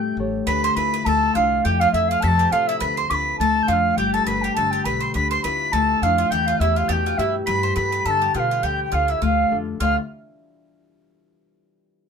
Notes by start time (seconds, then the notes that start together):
Already playing: A2 A3 C4 D4 F4 G4 G5 G6
0.17 A1 G4 A4 C#5
0.47 D2 D3 B4 B5 B6
0.64 C5 C6
0.75 D2 D4 E4 F4 B4 B5 B6
0.94 B4
1.05 D2 A3 A4 A5 A6 B6
1.34 C2 D4 E4 F4 F5 F6
1.64 F2 F3 G4 G5 G6
1.80 F4 F5 F6
1.92 F2 C4 E4 F4 A4 E5 E6
2.08 F4 F5 F6
2.20 F2 C3 A4 A5 B6
2.28 A6
2.39 G4
2.51 C4 F4 A4 F5 F6
2.67 E4 E5 E6
2.79 D2 D3 B4 B5 B6
2.97 C5 C6 C7
3.09 D2 D4 F4 A4 B4 D6 B6
3.14 B5
3.38 D2 A3 A4 A5 A6
3.63 G6
3.67 F2 D4 F4 A4 F5 G6
3.73 F6
3.96 G1 G3 G4 G5 G6
4.14 A4 A5 A6
4.26 G1 G4 A4 B4 B5 B6
4.42 G4 G5
4.54 G1 A4 A5 A6
4.58 D3
4.71 G4 G5
4.84 B1 G4 A4 B4 B5 B6
5.01 C5 C7
5.14 D2 D3 B4 B5 B6
5.31 C5 C6 C7
5.43 D2 D4 E4 F4 B4 B5 B6
5.72 D2 A3 A4 A5 A6
6.02 F2 D4 E4 F4 F5 F6
6.18 F4
6.30 E2 E3 G4 G5 G6
6.46 F4 F5
6.59 E2 B3 E4 G4 E5 E6
6.76 F4 F5 F6
6.88 E2 B2 G4 G5 A6
6.93 G6
7.06 F4
7.18 G2 B3 E4 G4 E5 E6
7.46 G2 G3 B4 B5 B6
7.63 C5 C6
7.76 G2 G4 A4 B4 B5 B6
7.92 B4
8.05 G2 D3 A4 A5 B6
8.11 A6
8.22 G4
8.34 B2 F4 G4 A4 B4 G5 F6
8.39 F5
8.51 F4
8.63 D2 D3 G4 G5 G6
8.92 D2 D4 F4 A4 F5 F6
9.08 E4 E5 E6
9.22 D2 A3 F4 F5 F6
9.51 F2 D4 F4 A4
9.80 D2 A2 D3 A3 F4 D5 F5 F6